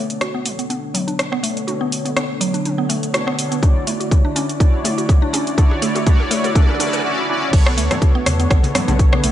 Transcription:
Already playing: D3 A3 B3 D4 A4 C#5
0.10 closed hi-hat, shaker
0.21 F#4, cross-stick, closed hi-hat, mid tom, shaker
0.34 B3
0.46 E2, mid tom, open hi-hat, shaker
0.59 B3, closed hi-hat, shaker
0.70 B1 B3, closed hi-hat, mid tom, shaker
0.94 F#3, mid tom, open hi-hat, shaker
1.07 B1 D4, closed hi-hat, shaker
1.19 cross-stick, closed hi-hat, mid tom, shaker
1.32 B3, cross-stick
1.43 B1 A3 B3 D4 A4 C#5, open hi-hat, shaker
1.57 closed hi-hat, shaker
1.67 B3 D4 F#4 A4 C#5, closed hi-hat, mid tom, shaker
1.81 B3
1.92 D2, open hi-hat, shaker
2.05 B3, closed hi-hat, mid tom, shaker
2.16 B3, cross-stick, closed hi-hat, mid tom, shaker
2.41 E2 F#3, open hi-hat, shaker
2.54 D4, closed hi-hat, shaker
2.65 closed hi-hat, mid tom, shaker
2.78 B3
2.89 A3, mid tom, open hi-hat, shaker
3.03 D2, closed hi-hat, shaker
3.14 B3 D4 F#4 A4 C#5, cross-stick, closed hi-hat, mid tom, shaker
3.27 B3, cross-stick
3.38 B3 D4 A4 C#5, open hi-hat, shaker
3.51 B3, closed hi-hat, shaker
3.63 D2 D4 E4 F#4 C#5 D5, kick, closed hi-hat, mid tom, shaker
3.87 F#2 A3, open hi-hat, mid tom, shaker
4.00 F#4, closed hi-hat, shaker
4.11 kick, closed hi-hat, mid tom, shaker
4.25 D4
4.36 F#2 C#4, mid tom, open hi-hat, shaker
4.49 closed hi-hat, shaker
4.60 D4 E4 F#4 C#5 D5, kick, closed hi-hat, mid tom, shaker
4.84 A3, mid tom, open hi-hat, shaker
4.98 F#4, closed hi-hat, shaker
5.09 kick, closed hi-hat, mid tom, shaker
5.22 D4
5.33 D2 C#4, open hi-hat, mid tom, shaker
5.47 closed hi-hat, shaker
5.58 D4 E4 F#4 C#5 D5, kick, closed hi-hat, mid tom, shaker
5.71 mid tom
5.82 F#2 A3, open hi-hat, mid tom, shaker
5.95 F#4, closed hi-hat, mid tom, shaker
6.06 D4 E4 F#4 C#5 D5, kick, closed hi-hat, mid tom, shaker
6.20 mid tom
6.31 F#2 A3, open hi-hat, mid tom, shaker
6.44 F#4, closed hi-hat, mid tom, shaker
6.55 C#4 D4 E4 F#4 D5, kick, closed hi-hat, mid tom, shaker
6.62 mid tom
6.69 mid tom
6.74 mid tom
6.80 C#4 D4 E4 F#4 D5, mid tom, open hi-hat, shaker
6.87 mid tom
6.93 closed hi-hat, mid tom, shaker
6.99 mid tom
7.04 C#4 E4 F#4 D5
7.18 high tom
7.29 C#4 E4 F#4 D5, mid tom
7.42 mid tom
7.53 B1 D3 A3 B3 D4 A4 C#5, kick, closed hi-hat, crash, shaker
7.66 B3, cross-stick
7.77 D2 A3, open hi-hat, shaker
7.91 cross-stick, closed hi-hat, low conga, shaker
8.02 F#4, kick, closed hi-hat, shaker
8.15 B3
8.26 E2, cross-stick, open hi-hat, high conga, shaker
8.40 B3, closed hi-hat, shaker
8.51 B1 B3, kick, cross-stick, closed hi-hat, shaker
8.63 open hi-hat, high conga
8.75 F#3, cross-stick, mid tom, open hi-hat, low conga, shaker
8.88 B1 D4, closed hi-hat, high conga, low conga, shaker
8.99 kick, closed hi-hat, high conga, shaker
9.13 B3, cross-stick, high conga
9.24 B1 A3 B3 D4 A4 C#5, open hi-hat, high conga, shaker

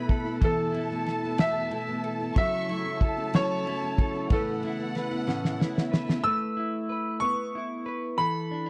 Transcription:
Already playing: B2 A3 B3 E4 A4 B4 B5
0.09 A4, kick, ride
0.25 A3 B3 E4
0.41 E2 B2 E3 A3 B3 E4 A4 A5, kick, ride
0.72 E3 A3 B3 E4, ride
0.76 E4
0.90 E3 A3 B3 E4
1.05 A4, snare, ride
1.23 E3 A3 B3 E4
1.38 E2 B2 E3 A3 B3 E4 E5, snare, ride
1.70 E3 A3 B3 E4, ride
1.87 E3 A3 B3 E4
2.04 A4, ride
2.20 E3 A3 B3 E4
2.36 C#3 F#3 A3 C#4 E4 A4 E5 C#6, kick, ride
2.68 F#3 A3 C#4 E4, ride
2.85 A3 C#4 E4
3.01 A4 A5, kick, ride
3.17 A3 C#4 E4
3.33 F#3 A3 C#4 E4 C#5, snare, ride
3.66 F#3 A3 C#4 E4, ride
3.81 A3 C#4 E4
3.98 A4, kick, ride
4.14 A3 C#4 E4
4.29 A2 C#3 E3 A3 B3 C#4 E4 A4 B4 F#5, kick, ride
4.63 E3 B3 C#4 E4, ride
4.78 B3 C#4 E4
4.95 B4, snare, ride
5.10 B3 C#4 E4
5.27 A2 E3 B3 C#4 E4, snare
5.45 snare
5.58 E3 B3 C#4 E4, snare
5.74 B3 C#4 E4, snare
5.91 B4 E5, snare
6.06 B3 C#4 E4, snare
6.24 A3 B4 E6
6.57 E4
6.89 B4
7.20 B3 C#6
7.55 E4
7.86 B4
8.18 E3 A4 B5
8.51 D4
8.66 E4

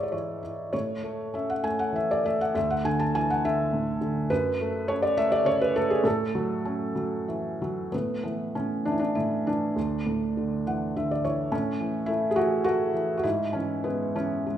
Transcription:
Already playing: G#2 E4 G#4 C#5 D5 E5
0.03 D5
0.12 E3 C#5
0.43 E4
0.73 A2 C#5
1.03 A3
1.34 C#4 E5
1.50 F#5
1.63 A3 G#5
1.79 F#5
1.92 E3 E5
2.11 D5
2.24 A3 E5
2.41 F#5
2.54 D2 E5
2.70 F#5
2.85 D3 G#5
3.00 A5
3.14 E3 G#5
3.30 F#5
3.45 D3 E5
3.73 A2
4.01 D3
4.30 F#2 B4
4.60 A3
4.88 C#4 C#5
5.02 D5
5.17 A3 E5
5.32 D5
5.44 C#3 C#5
5.61 B4
5.75 A3 A4
5.90 G#4
6.04 A2 A4
6.35 F#3
6.65 C#4
6.96 F#3
7.28 E3
7.62 F#3
7.92 A2 B3
8.24 E3 B3
8.55 A2 C#4
8.85 E3 D4
8.92 E4
8.99 D4
9.15 A2 E4
9.46 E3 D4
9.76 D2
10.07 A2
10.37 D3
10.67 E3 F#5
10.97 D3 E5
11.11 D5
11.25 E3 C#5
11.52 A2 C#4
11.80 E3
12.06 A3 E4
12.31 G#4
12.36 E3 F#4
12.64 A3 F#4
12.94 E3
13.17 F#4
13.23 G#2 E4
13.53 E3 C#4
13.84 G#3 B3
14.15 E3 C#4
14.47 G#3

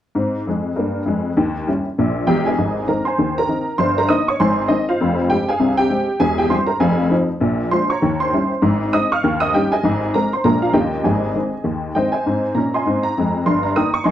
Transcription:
0.15 G#2 C4
0.47 F2 G#3
0.76 G2 A#3
1.05 F2 G#3
1.37 D#2 D#3
1.67 G3 C#4 E4
1.98 A#1 A#2
2.27 E1 E2 G4 G5
2.46 G#4 D#5 G#5
2.58 G#1 G#2
2.88 D#3 C4 D#4 A#4 A#5
3.05 C5 G#5 C6
3.18 D#2 D#3
3.38 A#4 A#5
3.48 D#3 C4 D#4
3.78 G1 G2 C5 C6
3.98 A#4 A#5
4.09 D#3 A#3 D#4 D#5 D#6
4.28 C#5 C#6
4.40 G#1 G#2 C5 G#5 C6
4.68 D#3 G#3 C4 D#4 D#5
4.89 F4 C5 F5
5.01 F1 F2
5.30 G#3 C4 G4 G5
5.49 G#4 F5 G#5
5.59 C2 C3
5.77 G4 G5
5.90 G#3 C4
6.20 E1 E2 G#4 G#5
6.38 G4 G5
6.50 G3 C4 E4 C5 C6
6.66 A#4 A#5
6.80 F1 F2 G#4 F5 G#5
7.11 F3 C4 D#4
7.40 A#1 A#2
7.71 G#3 D4 F4 C5 C6
7.90 C#5 A#5 C#6
8.02 D#2 D#3
8.20 C5 C6
8.33 G3 C#4 E4
8.62 G#1 G#2
8.93 G#3 C4 D#4 D#5 D#6
9.12 F5 C#6 F6
9.24 D#2 D#3
9.40 D#5 D#6
9.54 G3 C#4 D#4 G4 G5
9.72 G#4 D#5 G#5
9.84 G#1 G#2
10.14 G#3 C4 D#4 A#4 A#5
10.33 C5 C6
10.44 A#1 A#2 G#3 A#3 D4 A#4 A#5
10.62 F4 F5
10.73 D#2 D#3 A#3 C#4 G4 D#5 G5
11.04 G#1 G#2 G#4 D#5 G#5
11.35 D#3 G#3 C4
11.64 D#2 D#3
11.95 D#3 G#3 C4 C5 D#5 G5
12.12 C5 D#5 G#5
12.26 G#2 C4
12.55 A#2 C#4 A#5
12.74 D#5 G#5 C6
12.86 G#2 C4
13.03 A#5
13.18 F2 G#3
13.46 G1 G2 C6
13.63 A#5
13.76 D#3 A#3 D#4 G5 A#5 D#6
13.94 C#6
14.04 G#1 G#2 D#5 G#5 C6

